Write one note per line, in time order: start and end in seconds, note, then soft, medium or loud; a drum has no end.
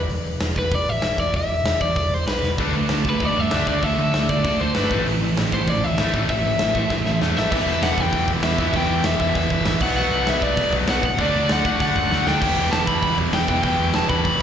0.09 0.32 E1 medium
0.09 open hi-hat medium
0.41 0.53 E1 medium
0.41 snare loud
0.41 open hi-hat medium
0.56 0.68 E1 medium
0.56 0.74 B4 medium
0.56 kick medium
0.71 0.83 E1 medium
0.71 0.89 D5 loud
0.71 kick loud
0.71 open hi-hat medium
0.87 0.99 A1 medium
0.87 1.20 E5 loud
1.02 1.14 E1 medium
1.02 snare loud
1.02 open hi-hat medium
1.18 1.30 E1 medium
1.18 1.36 D5 medium
1.18 kick medium
1.34 1.45 E1 medium
1.34 1.81 E5 loud
1.34 kick loud
1.34 open hi-hat medium
1.50 1.61 E1 medium
1.64 1.76 E1 medium
1.64 snare loud
1.64 open hi-hat medium
1.81 1.92 E2 medium
1.81 1.96 D5 medium
1.81 kick medium
1.96 2.08 E1 loud
1.96 2.14 D5 medium
1.96 kick medium
1.96 open hi-hat medium
2.10 2.22 E1 medium
2.14 2.27 C5 medium
2.26 2.38 B1 medium
2.26 2.49 B4 medium
2.26 snare loud
2.26 open hi-hat medium
2.42 2.54 E1 medium
2.42 snare medium
2.58 2.81 D2 medium
2.58 3.19 D3 medium
2.58 2.72 D3 medium
2.58 2.73 A3 medium
2.58 3.21 A3 medium
2.58 2.74 D4 loud
2.58 3.20 D4 medium
2.58 3.21 F#4 medium
2.58 3.22 A4 medium
2.58 kick loud
2.58 open hi-hat medium
2.74 2.88 D3 medium
2.74 2.88 A3 medium
2.89 3.01 D2 medium
2.89 3.03 D3 medium
2.89 3.04 A3 medium
2.89 snare medium
2.89 open hi-hat soft
3.04 3.16 D2 medium
3.04 3.19 D3 medium
3.04 3.19 A3 medium
3.04 kick medium
3.10 3.25 B4 medium
3.20 3.32 D2 loud
3.20 3.81 D3 medium
3.20 3.35 D3 medium
3.20 3.35 A3 medium
3.20 3.83 A3 medium
3.20 3.82 D4 medium
3.20 3.82 F#4 medium
3.20 3.84 A4 medium
3.20 kick loud
3.20 open hi-hat medium
3.25 3.39 D5 medium
3.36 3.48 G2 medium
3.36 3.50 D3 medium
3.36 3.50 A3 medium
3.36 3.54 E5 loud
3.51 3.64 D2 medium
3.51 3.66 D3 medium
3.51 3.66 A3 medium
3.51 3.67 D4 medium
3.51 snare loud
3.51 open hi-hat soft
3.55 3.68 E5 loud
3.67 3.78 D2 medium
3.67 3.82 D3 medium
3.67 3.82 A3 medium
3.67 3.82 D4 medium
3.67 3.84 D5 medium
3.67 kick medium
3.82 3.94 D2 medium
3.82 4.43 D3 medium
3.82 3.97 D3 medium
3.82 4.45 A3 medium
3.82 3.97 A3 medium
3.82 4.44 D4 medium
3.82 4.44 F#4 loud
3.82 4.47 A4 loud
3.82 4.30 E5 loud
3.82 kick medium
3.82 open hi-hat soft
3.98 4.10 D2 medium
3.98 4.12 D3 medium
3.98 4.12 A3 medium
4.14 4.26 D2 medium
4.14 4.28 D3 medium
4.14 4.28 A3 medium
4.14 snare loud
4.14 open hi-hat medium
4.29 4.43 D3 medium
4.29 4.41 D3 medium
4.29 4.43 A3 medium
4.29 4.43 D5 medium
4.29 kick medium
4.44 4.56 D2 medium
4.44 4.58 D3 medium
4.44 4.90 D3 medium
4.44 4.59 A3 medium
4.44 4.91 A3 medium
4.44 4.91 D4 medium
4.44 4.91 F#4 medium
4.44 4.92 A4 medium
4.44 4.60 D5 loud
4.44 kick loud
4.44 open hi-hat medium
4.60 4.72 D2 medium
4.60 4.74 D3 medium
4.60 4.74 A3 medium
4.60 4.74 C5 medium
4.74 4.88 G1 medium
4.74 4.90 D3 medium
4.74 4.90 A3 medium
4.74 4.90 D4 medium
4.74 4.98 B4 medium
4.74 snare loud
4.74 open hi-hat medium
4.90 5.02 A1 medium
4.90 5.05 A2 medium
4.90 5.54 A2 medium
4.90 5.54 E3 medium
4.90 5.06 E3 medium
4.90 5.06 A3 loud
4.90 5.53 A3 medium
4.90 5.53 C4 medium
4.90 5.52 E4 medium
4.90 5.52 A4 medium
4.90 kick loud
5.07 5.30 A1 medium
5.07 5.20 A2 medium
5.07 5.21 E3 medium
5.07 open hi-hat medium
5.23 5.36 A2 medium
5.23 5.36 E3 medium
5.37 5.49 A1 medium
5.37 5.51 A2 medium
5.37 5.51 E3 medium
5.37 snare loud
5.37 open hi-hat medium
5.52 5.64 A1 medium
5.52 5.67 A2 medium
5.52 6.13 A2 medium
5.52 5.67 E3 medium
5.52 6.14 E3 medium
5.52 6.14 A3 medium
5.52 6.14 C4 medium
5.52 6.16 E4 medium
5.52 6.13 A4 medium
5.52 5.69 C5 medium
5.52 kick medium
5.67 5.79 A1 medium
5.67 5.82 A2 medium
5.67 5.82 E3 medium
5.67 5.84 D5 loud
5.67 kick loud
5.67 open hi-hat medium
5.84 5.95 D2 medium
5.84 5.97 A2 medium
5.84 5.98 E3 medium
5.84 6.14 E5 loud
5.98 6.10 A1 medium
5.98 6.14 A2 medium
5.98 6.14 E3 medium
5.98 6.14 A3 loud
5.98 snare loud
5.98 open hi-hat medium
6.14 6.25 A1 medium
6.14 6.75 A2 medium
6.14 6.29 A2 medium
6.14 6.75 E3 loud
6.14 6.29 E3 loud
6.14 6.75 A3 medium
6.14 6.29 A3 medium
6.14 6.75 C4 medium
6.14 6.74 E4 medium
6.14 6.74 A4 medium
6.14 kick medium
6.29 6.40 A1 loud
6.29 6.44 A2 medium
6.29 6.44 E3 medium
6.29 7.18 E5 loud
6.29 kick medium
6.29 open hi-hat medium
6.45 6.57 A1 medium
6.45 6.59 A2 medium
6.45 6.59 E3 medium
6.59 6.72 A1 medium
6.59 6.74 A2 medium
6.59 6.74 E3 medium
6.59 snare loud
6.59 open hi-hat medium
6.75 6.86 A2 medium
6.75 6.90 A2 medium
6.75 7.37 A2 medium
6.75 6.90 E3 medium
6.75 7.37 E3 medium
6.75 7.36 A3 medium
6.75 7.36 C4 medium
6.75 7.36 E4 medium
6.75 7.36 A4 medium
6.75 kick medium
6.90 7.02 A1 loud
6.90 7.05 A2 medium
6.90 7.05 E3 medium
6.90 kick loud
6.90 snare medium
7.05 7.17 A1 medium
7.05 7.20 A2 medium
7.05 7.20 E3 medium
7.05 snare medium
7.21 7.33 E2 medium
7.21 7.36 A2 medium
7.21 7.36 E3 medium
7.21 7.36 A3 medium
7.21 snare medium
7.36 7.48 A1 medium
7.36 7.51 A2 medium
7.36 7.52 E3 medium
7.36 7.52 A3 loud
7.36 7.50 E5 medium
7.36 snare medium
7.51 7.62 E1 medium
7.51 7.98 E2 medium
7.51 7.98 B2 loud
7.51 8.58 E3 medium
7.51 7.97 E3 loud
7.51 8.59 G3 medium
7.51 8.60 B3 loud
7.51 8.58 E4 loud
7.51 7.83 E5 medium
7.51 kick loud
7.51 crash loud
7.66 7.76 E1 medium
7.82 7.92 E1 medium
7.82 8.00 F#5 loud
7.82 snare loud
7.82 open hi-hat medium
7.98 8.08 E1 medium
7.98 8.43 E2 medium
7.98 8.44 B2 medium
7.98 8.43 E3 medium
7.98 8.30 G5 loud
7.98 kick medium
8.13 8.23 E1 loud
8.13 kick loud
8.13 open hi-hat medium
8.28 8.38 E1 medium
8.28 kick medium
8.43 8.53 E1 loud
8.43 8.72 E2 medium
8.43 8.74 B2 medium
8.43 8.74 E3 medium
8.43 8.59 E5 loud
8.43 snare loud
8.43 open hi-hat medium
8.58 8.69 E1 medium
8.58 8.73 E2 medium
8.58 8.74 B2 medium
8.58 8.73 E3 loud
8.58 8.73 E3 medium
8.58 8.74 G3 medium
8.58 8.75 B3 medium
8.58 8.74 E4 medium
8.58 8.76 E5 medium
8.58 kick medium
8.73 8.83 E1 loud
8.73 9.19 E2 loud
8.73 9.19 B2 loud
8.73 9.81 E3 medium
8.73 9.18 E3 loud
8.73 9.81 G3 loud
8.73 9.81 B3 loud
8.73 9.82 E4 loud
8.73 9.06 G5 medium
8.73 kick loud
8.73 open hi-hat medium
8.89 8.99 E2 medium
9.04 9.14 E1 loud
9.04 9.20 E5 medium
9.04 snare loud
9.04 open hi-hat medium
9.19 9.29 E1 medium
9.19 9.65 E2 medium
9.19 9.66 B2 medium
9.19 9.65 E3 medium
9.19 9.36 E5 medium
9.19 kick medium
9.35 9.45 E1 loud
9.35 9.82 E5 loud
9.35 kick loud
9.35 open hi-hat medium
9.50 9.60 G1 medium
9.50 kick medium
9.65 9.75 A1 medium
9.65 9.81 E2 medium
9.65 9.80 B2 medium
9.65 9.82 E3 medium
9.65 snare loud
9.65 open hi-hat medium
9.80 9.91 B1 medium
9.80 10.87 B2 loud
9.80 10.25 B2 medium
9.80 10.88 F#3 loud
9.80 10.27 F#3 loud
9.80 10.89 B3 loud
9.80 10.28 B3 loud
9.80 10.89 D4 loud
9.80 9.95 F#5 loud
9.80 kick loud
9.80 crash loud
9.97 10.07 B1 loud
9.97 10.28 F#5 medium
10.12 10.22 B1 medium
10.26 10.37 B1 loud
10.26 10.72 B2 medium
10.26 10.71 F#3 medium
10.26 10.70 B3 loud
10.26 10.43 E5 loud
10.26 snare loud
10.26 open hi-hat medium
10.42 10.52 B1 medium
10.42 10.74 D5 medium
10.42 kick medium
10.57 10.67 B1 loud
10.57 kick loud
10.57 open hi-hat medium
10.71 10.83 B1 medium
10.71 11.03 B2 medium
10.71 11.03 F#3 medium
10.71 11.02 B3 medium
10.71 kick medium
10.87 10.98 B1 medium
10.87 11.02 B2 medium
10.87 11.03 B2 medium
10.87 11.03 F#3 medium
10.87 11.04 B3 medium
10.87 11.04 D4 medium
10.87 11.05 F#5 loud
10.87 snare loud
10.87 open hi-hat medium
11.03 11.13 B1 medium
11.03 11.21 F#5 loud
11.03 kick medium
11.17 11.28 D2 loud
11.17 11.63 D3 loud
11.17 12.25 D3 loud
11.17 12.26 F#3 loud
11.17 11.64 A3 medium
11.17 12.26 A3 loud
11.17 11.63 D4 loud
11.17 11.52 D5 medium
11.17 kick loud
11.17 open hi-hat medium
11.21 12.25 D4 loud
11.36 11.45 D3 medium
11.49 11.60 D2 medium
11.49 11.65 F#5 loud
11.49 snare loud
11.49 open hi-hat medium
11.65 11.75 D2 loud
11.65 12.09 D3 medium
11.65 12.10 A3 medium
11.65 12.10 D4 medium
11.65 11.80 F#5 loud
11.65 kick loud
11.80 11.90 D2 loud
11.80 12.28 F#5 loud
11.80 kick loud
11.80 open hi-hat medium
11.96 12.06 F#2 medium
11.96 kick medium
12.10 12.21 D2 loud
12.10 12.40 D3 medium
12.10 12.41 A3 medium
12.10 12.42 D4 medium
12.10 snare medium
12.26 12.36 D2 medium
12.26 12.40 D3 medium
12.26 12.42 D3 medium
12.26 12.41 F#3 medium
12.26 12.41 A3 medium
12.26 12.42 A3 medium
12.26 12.41 D4 medium
12.26 12.41 G5 loud
12.26 snare loud
12.40 12.52 E1 loud
12.40 12.86 E2 medium
12.40 12.86 B2 loud
12.40 13.48 E3 medium
12.40 12.85 E3 loud
12.40 13.48 G3 loud
12.40 13.49 B3 loud
12.40 13.47 E4 loud
12.40 12.71 G5 loud
12.40 kick loud
12.40 splash medium
12.40 crash loud
12.56 12.66 E1 medium
12.72 12.82 E1 medium
12.72 12.87 A5 loud
12.72 snare loud
12.72 open hi-hat medium
12.86 12.97 E1 medium
12.86 13.30 E2 medium
12.86 13.32 B2 medium
12.86 13.32 E3 loud
12.86 13.16 B5 loud
12.86 kick medium
13.03 13.12 E1 loud
13.03 kick loud
13.03 open hi-hat medium
13.18 13.28 E1 medium
13.18 kick medium
13.32 13.42 E1 medium
13.32 13.61 E2 medium
13.32 13.62 B2 medium
13.32 13.63 E3 medium
13.32 13.48 G5 loud
13.32 snare loud
13.32 open hi-hat medium
13.48 13.58 E1 medium
13.48 13.62 E2 medium
13.48 13.64 B2 medium
13.48 13.63 E3 medium
13.48 13.63 G3 medium
13.48 13.65 B3 medium
13.48 13.63 E4 medium
13.48 13.62 G5 loud
13.48 kick medium
13.62 13.73 E1 loud
13.62 14.09 E2 loud
13.62 14.08 B2 loud
13.62 14.42 E3 loud
13.62 14.08 E3 loud
13.62 14.42 G3 loud
13.62 14.42 B3 loud
13.62 14.42 E4 loud
13.62 13.95 G5 loud
13.62 kick medium
13.62 open hi-hat medium
13.80 13.89 E2 medium
13.94 14.05 E1 loud
13.94 14.09 A5 loud
13.94 snare loud
13.94 open hi-hat medium
14.09 14.19 E1 medium
14.09 14.42 E2 medium
14.09 14.42 B2 medium
14.09 14.42 E3 medium
14.09 14.39 B5 loud
14.09 kick medium
14.25 14.35 E1 loud
14.25 kick loud
14.25 open hi-hat medium